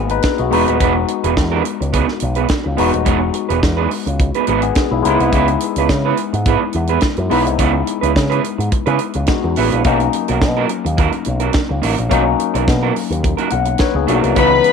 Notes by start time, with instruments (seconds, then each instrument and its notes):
Already playing: picked electric bass G#1, tine electric piano A#3 B3 D#4 F#4 G#4
0.09 tine electric piano D#4 B4, muted clean electric guitar stroke, closed hi-hat
0.22 muted clean electric guitar stroke, kick, snare, closed hi-hat
0.38 picked electric bass B1, tine electric piano F#4 D#5, muted clean electric guitar stroke, closed hi-hat
0.51 picked electric bass E1, tine electric piano G#3 B3 D#4 F#4, clean electric guitar B3 D#4 G#4 B4, open hi-hat
0.68 picked electric bass D#1, clean electric guitar B3 D#4 G#4 B4, closed hi-hat
0.80 picked electric bass E1, clean electric guitar B3 D#4 G#4 B4, kick, closed hi-hat
0.96 muted clean electric guitar stroke
1.08 muted clean electric guitar stroke, closed hi-hat
1.24 picked electric bass E1, clean electric guitar B3 D#4 G#4 B4, closed hi-hat
1.37 picked electric bass E2, muted clean electric guitar stroke, kick, snare, closed hi-hat
1.52 clean electric guitar B3 D#4 G#4 B4
1.64 muted clean electric guitar stroke, closed hi-hat
1.80 picked electric bass C#2, muted clean electric guitar stroke, closed hi-hat
1.93 clean electric guitar B3 D#4 G#4 B4, kick, closed hi-hat
2.08 muted clean electric guitar stroke, snare
2.20 picked electric bass B1, muted clean electric guitar stroke, closed hi-hat
2.35 clean electric guitar B3 D#4 G#4 B4, closed hi-hat
2.48 muted clean electric guitar stroke, kick, snare, closed hi-hat
2.64 picked electric bass C#2, muted clean electric guitar stroke
2.77 picked electric bass E1, tine electric piano G#3 B3 D#4 F#4, clean electric guitar B3 D#4 G#4 B4, open hi-hat
2.93 picked electric bass D#1, muted clean electric guitar stroke, closed hi-hat
3.05 picked electric bass E1, clean electric guitar B3 D#4 G#4 C#5, kick, closed hi-hat
3.20 muted clean electric guitar stroke
3.34 muted clean electric guitar stroke, closed hi-hat
3.49 picked electric bass E1, clean electric guitar B3 D#4 G#4 B4, closed hi-hat
3.62 picked electric bass E2, muted clean electric guitar stroke, kick, snare, closed hi-hat
3.77 clean electric guitar B3 D#4 G#4 B4
3.91 muted clean electric guitar stroke, open hi-hat
4.06 picked electric bass C#2, muted clean electric guitar stroke, closed hi-hat
4.19 muted clean electric guitar stroke, kick, closed hi-hat
4.34 clean electric guitar B3 D#4 G#4 B4, closed hi-hat
4.47 picked electric bass G#1, clean electric guitar B3 D#4 G#4 B4, tine electric piano D#4 B4, closed hi-hat
4.62 tine electric piano B3 G#4, muted clean electric guitar stroke, closed hi-hat
4.75 muted clean electric guitar stroke, kick, snare, closed hi-hat
4.91 picked electric bass B1, tine electric piano G#3 E4, muted clean electric guitar stroke
5.03 picked electric bass C#2, tine electric piano G#3 B3 D#4 E4, clean electric guitar B3, closed hi-hat
5.07 clean electric guitar E4 G#4 B4
5.20 picked electric bass C2, clean electric guitar B3 E4 G#4 B4, closed hi-hat
5.32 picked electric bass C#2, clean electric guitar B3 E4 G#4 B4, kick, closed hi-hat
5.48 muted clean electric guitar stroke, closed hi-hat
5.60 muted clean electric guitar stroke, closed hi-hat
5.76 picked electric bass C#2, clean electric guitar E4 G#4 B4, closed hi-hat
5.80 clean electric guitar B3
5.89 picked electric bass C#3, kick, snare, closed hi-hat
6.05 clean electric guitar B3 E4 G#4 B4
6.17 muted clean electric guitar stroke, closed hi-hat
6.33 picked electric bass G#2, muted clean electric guitar stroke, closed hi-hat
6.45 clean electric guitar B3 E4 G#4 B4, kick, closed hi-hat
6.62 muted clean electric guitar stroke
6.73 picked electric bass E2, muted clean electric guitar stroke, closed hi-hat
6.87 clean electric guitar B3 E4 G#4 B4, closed hi-hat
7.01 kick, snare, closed hi-hat
7.16 picked electric bass F#2, muted clean electric guitar stroke, closed hi-hat
7.29 picked electric bass B1, tine electric piano G#3 B3 D#4 E4, clean electric guitar B3 E4 G#4 B4, open hi-hat
7.46 picked electric bass C2, muted clean electric guitar stroke, closed hi-hat
7.59 picked electric bass C#2, clean electric guitar B3 E4 G#4 C#5, kick, closed hi-hat
7.74 muted clean electric guitar stroke
7.87 muted clean electric guitar stroke, closed hi-hat
8.01 picked electric bass C#2, clean electric guitar B3 E4 G#4 B4, closed hi-hat
8.15 picked electric bass C#3, muted clean electric guitar stroke, kick, snare, closed hi-hat
8.30 clean electric guitar B3 E4 G#4 B4, closed hi-hat
8.44 muted clean electric guitar stroke, closed hi-hat
8.58 picked electric bass G#2, muted clean electric guitar stroke, closed hi-hat
8.71 muted clean electric guitar stroke, muted picked electric bass stroke, kick, closed hi-hat
8.86 picked electric bass C#3, clean electric guitar B3 E4 G#4 B4, closed hi-hat
8.99 muted clean electric guitar stroke, closed hi-hat
9.13 picked electric bass C#2, muted clean electric guitar stroke, closed hi-hat
9.26 tine electric piano G#3 B3 D#4 F#4, muted clean electric guitar stroke, kick, snare, closed hi-hat
9.44 picked electric bass E2, muted clean electric guitar stroke
9.56 picked electric bass A1, clean electric guitar B3 E4 G#4 B4, open hi-hat
9.72 picked electric bass A#1, clean electric guitar B3 E4 G#4 B4, closed hi-hat
9.84 picked electric bass B1, tine electric piano F#3 A#3 C#4 D#4, clean electric guitar A#3 D#4 F#4 A#4, kick, closed hi-hat
10.00 muted clean electric guitar stroke, closed hi-hat
10.13 muted clean electric guitar stroke, closed hi-hat
10.28 picked electric bass B1, clean electric guitar A#3 D#4 F#4 A#4, closed hi-hat
10.41 picked electric bass B2, muted clean electric guitar stroke, kick, snare, closed hi-hat
10.57 clean electric guitar A#3 D#4 F#4 A#4
10.69 muted clean electric guitar stroke, closed hi-hat
10.85 picked electric bass D#2, muted clean electric guitar stroke, closed hi-hat
10.97 clean electric guitar A#3 D#4 F#4 A#4, kick, closed hi-hat
11.12 muted clean electric guitar stroke, closed hi-hat
11.25 picked electric bass B1, muted clean electric guitar stroke, closed hi-hat
11.40 clean electric guitar A#3 D#4 F#4 A#4, closed hi-hat
11.53 muted clean electric guitar stroke, kick, snare, closed hi-hat
11.69 picked electric bass C#2, muted clean electric guitar stroke
11.82 picked electric bass A1, clean electric guitar A#3 D#4 F#4 A#4, open hi-hat
11.97 picked electric bass A#1, muted clean electric guitar stroke, closed hi-hat
12.09 picked electric bass B1, tine electric piano F#3 A#3 C#4 D#4, clean electric guitar A#3 D#4 F#4 C#5, kick, closed hi-hat
12.25 muted clean electric guitar stroke
12.39 muted clean electric guitar stroke, closed hi-hat
12.54 picked electric bass B1, clean electric guitar A#3 D#4 F#4 A#4, closed hi-hat
12.67 picked electric bass B2, muted clean electric guitar stroke, kick, snare, closed hi-hat
12.83 clean electric guitar A#3 D#4 F#4 A#4
12.95 muted clean electric guitar stroke, open hi-hat
13.10 picked electric bass D#2, muted clean electric guitar stroke, closed hi-hat
13.23 muted clean electric guitar stroke, kick, closed hi-hat
13.37 clean electric guitar A#3 D#4 F#4 A#4, closed hi-hat
13.50 picked electric bass B1, tine electric piano F#5, muted clean electric guitar stroke, closed hi-hat
13.65 muted clean electric guitar stroke, closed hi-hat
13.78 tine electric piano D#4 B4 C#5, muted clean electric guitar stroke, kick, snare, closed hi-hat
13.94 picked electric bass C#2, tine electric piano B3 G#4, muted clean electric guitar stroke
14.07 picked electric bass B1, clean electric guitar A#3 D#4 F#4 A#4, tine electric piano A#3 F#4, closed hi-hat
14.22 picked electric bass C2, tine electric piano F#3 D#4, clean electric guitar A#3 D#4 F#4 A#4, closed hi-hat
14.35 picked electric bass C#2, french horn section C#3 E3 B3, tine electric piano E3 G#3 B3 D#4, clean electric guitar B3 E4 G#4 C#5, string section B4 B5, kick, closed hi-hat
14.51 muted clean electric guitar stroke
14.64 muted clean electric guitar stroke, closed hi-hat